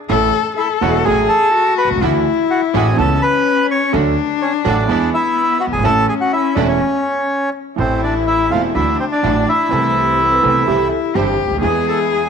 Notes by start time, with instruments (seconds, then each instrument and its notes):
0.09 upright bass A1, grand piano A1 A2 E3 A3 C#4 A4, string section A3 C#4 E4, cello A4
0.57 bandoneon E4 E5, cello A4
0.81 grand piano E1 E2 E3 A3 C#4 A4, upright bass E1, string section A3 C#4 E4, bandoneon F#4 F#5
1.05 grand piano A1 A2 F#3 A3 C#4 A4, upright bass A1, string section A3 C#4 F#4, cello G#4, bandoneon G#4 G#5
1.29 bandoneon A4 A5
1.55 cello F#4
1.78 bandoneon B4 B5
1.84 grand piano B1, upright bass B1
1.90 grand piano C2, upright bass C2
1.96 upright bass C#2, grand piano C#2
2.02 grand piano D2 D3 E3 A3 D4 F#4, upright bass D2, string section D4 E4 F#4, cello E4
2.50 bandoneon F#4 F#5
2.74 grand piano A1 A2 E3 A3 D4 F#4, upright bass A1, string section D4 E4 F#4, bandoneon G#4 G#5
2.92 cello C4
2.97 grand piano C#2 C#3 E3 B3 C#4 A4, upright bass C#2, string section B3 C#4 A4, cello C#4, bandoneon A4 A5
3.22 bandoneon B4 B5
3.71 bandoneon C#5 C#6
3.92 grand piano D2 D3 F#3 A3 D4 A4, upright bass D2, string section A3 D4 F#4, cello D4
4.42 bandoneon C#4 C#5
4.64 grand piano A1 A2 F#3 A3 D4 A4, upright bass A1, string section A3 D4 F#4, bandoneon D4 D5
4.88 grand piano E2 E3 B3 D4 G#4, upright bass E2, string section G#3 D4 E4, cello B3
5.14 bandoneon E4 E5
5.60 bandoneon F#4 F#5
5.66 grand piano F#1, upright bass F#1
5.72 grand piano G1, upright bass G1, bandoneon G#4 G#5
5.78 grand piano G#1, upright bass G#1
5.83 grand piano A1 A2 E3 A3 C#4 A4, upright bass A1, string section A3 C#4 E4, cello C#4, bandoneon A4 A5
6.09 bandoneon G#4 G#5
6.21 bandoneon F#4 F#5
6.33 bandoneon E4 E5
6.55 grand piano E1 E2 E3 A3 C#4 A4, upright bass E1, string section A3 C#4 E4, bandoneon D4 D5
6.68 bandoneon C#4 C#5
7.76 grand piano A1 A2 E3 A3 C4 A4, upright bass A1, string section A3 C4 E4, bandoneon C4 C5, cello E4
8.03 bandoneon D4 D5
8.27 bandoneon E4 E5
8.50 grand piano E1 E2 E3 A3 C4 A4, upright bass E1, string section A3 C4 E4, bandoneon F4 F5
8.74 grand piano D2 D3 E3 A3 D4 F#4, upright bass D2, string section F#3 D4 E4, cello D4, bandoneon E4 E5
9.00 bandoneon C4 C5
9.11 bandoneon D4 D5
9.23 grand piano A1 A2 E3 A3 D4 F#4, upright bass A1, string section F#3 D4 E4
9.49 bandoneon E4 E5
9.69 grand piano C2 C3 E3 C4 B4, upright bass C2, string section A3 C4, cello C4
9.73 grand piano A4
9.96 vibraphone G4
10.20 vibraphone A4
10.31 vibraphone B4
10.42 grand piano C2 C3 E3 B3 C4 A4, upright bass C2, string section A3 B3 C4, vibraphone A4
10.66 grand piano C2 C3 E3 G3 C4 G4, upright bass C2, string section G3 C4 E4, cello E4, vibraphone G4
10.78 vibraphone A4
10.91 vibraphone G4
11.15 grand piano G1 G2 E3 G3 C4 G4, upright bass G1, string section G3 C4 E4, cello G4, vibraphone C5
11.45 upright bass C#2, grand piano C#2
11.51 upright bass D2, grand piano D2
11.57 upright bass D#2, grand piano D#2
11.62 upright bass E2, grand piano E2 E3 G#3 B3 G#4, string section G#3 B3 E4, cello G#4, bandoneon G#4 G#5
11.88 bandoneon A4 A5
12.12 bandoneon G#4 G#5